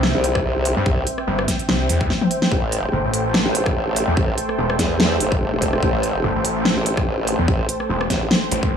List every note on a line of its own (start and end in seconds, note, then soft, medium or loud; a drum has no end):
0.00 0.13 C2 loud
0.00 2.48 C4 medium
0.00 2.48 C5 medium
0.00 2.48 E5 medium
0.00 8.77 G5 medium
0.00 cross-stick medium
0.00 snare loud
0.15 0.75 C2 loud
0.24 closed hi-hat medium
0.35 kick loud
0.35 cross-stick medium
0.65 closed hi-hat medium
0.77 0.85 G2 loud
0.86 1.05 C2 loud
0.86 kick loud
1.07 closed hi-hat medium
1.18 cross-stick medium
1.27 1.47 G1 loud
1.39 cross-stick medium
1.48 kick medium
1.48 snare medium
1.48 closed hi-hat medium
1.59 closed hi-hat soft
1.69 1.88 C2 medium
1.69 snare loud
1.89 2.10 E2 loud
1.89 closed hi-hat medium
2.01 kick loud
2.10 snare medium
2.21 high tom medium
2.31 closed hi-hat medium
2.42 snare medium
2.51 2.91 A1 loud
2.51 8.77 A3 medium
2.51 8.77 A4 medium
2.51 8.77 C5 medium
2.51 kick loud
2.72 closed hi-hat medium
2.93 3.02 G1 loud
3.04 3.44 A1 loud
3.14 closed hi-hat medium
3.34 cross-stick medium
3.34 snare loud
3.46 4.06 A1 loud
3.55 closed hi-hat medium
3.66 kick loud
3.66 cross-stick medium
3.96 closed hi-hat medium
4.08 4.16 E2 loud
4.17 4.36 A1 loud
4.17 kick loud
4.38 closed hi-hat medium
4.49 cross-stick soft
4.58 4.78 E1 loud
4.70 cross-stick medium
4.79 5.19 E2 loud
4.79 kick medium
4.79 snare medium
4.79 closed hi-hat medium
5.00 snare loud
5.20 5.51 G1 loud
5.20 closed hi-hat medium
5.32 kick loud
5.53 5.81 E1 loud
5.62 kick medium
5.62 closed hi-hat medium
5.73 cross-stick medium
5.83 6.22 A1 loud
5.83 kick loud
6.03 closed hi-hat medium
6.24 6.33 G1 loud
6.35 6.75 A1 loud
6.45 closed hi-hat medium
6.65 cross-stick medium
6.65 snare loud
6.77 7.37 A1 loud
6.86 closed hi-hat medium
6.97 kick loud
6.97 cross-stick medium
7.27 closed hi-hat medium
7.39 7.47 E2 loud
7.48 7.67 A1 loud
7.48 kick loud
7.69 closed hi-hat medium
7.80 cross-stick soft
7.89 8.09 E1 loud
8.01 cross-stick medium
8.10 8.29 A1 loud
8.10 kick medium
8.10 snare medium
8.10 closed hi-hat medium
8.31 snare loud
8.52 8.77 A1 loud
8.52 closed hi-hat medium
8.63 kick loud